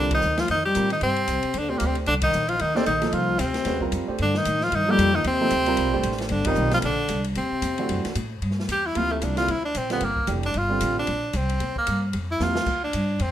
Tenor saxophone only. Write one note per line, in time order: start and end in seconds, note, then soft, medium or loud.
0.00 0.12 D4 medium
0.14 0.41 D#4 medium
0.40 0.49 F4 medium
0.51 0.64 D#4 medium
0.65 0.89 G4 medium
0.92 1.01 D#4 medium
1.03 1.60 C4 medium
1.58 1.71 D4 medium
1.69 1.79 C4 medium
1.77 1.88 A#3 medium
1.86 1.97 C4 medium
2.07 2.14 D4 medium
2.23 2.50 D#4 medium
2.49 2.62 F4 medium
2.61 2.78 D#4 medium
2.77 2.85 C4 medium
2.86 3.08 D#4 medium
3.08 3.15 D#4 medium
3.13 3.41 F4 medium
3.40 3.92 C4 medium
4.22 4.39 D4 medium
4.38 4.65 D#4 medium
4.63 4.77 F4 medium
4.75 4.92 D#4 medium
4.90 5.17 G4 loud
5.15 5.25 D#4 medium
5.27 6.17 C4 loud
6.31 6.49 D4 medium
6.47 6.73 D#4 medium
6.74 6.78 F4 medium
6.85 7.23 D4 medium
7.37 8.12 C4 medium
8.72 8.88 G4 medium
8.86 8.98 E4 medium
8.97 9.13 F4 medium
9.12 9.25 A3 medium
9.24 9.37 D4 medium
9.37 9.52 F4 medium
9.51 9.64 E4 medium
9.65 9.79 D4 medium
9.77 9.92 C4 medium
9.92 10.06 B3 medium
10.04 10.29 A#3 medium
10.46 10.59 D4 medium
10.58 10.98 F4 medium
10.99 11.38 D4 medium
11.36 11.77 C4 medium
11.78 12.02 A#3 medium
12.31 12.44 E4 medium
12.43 12.83 F4 medium
12.83 13.23 D4 medium
13.22 13.31 C4 medium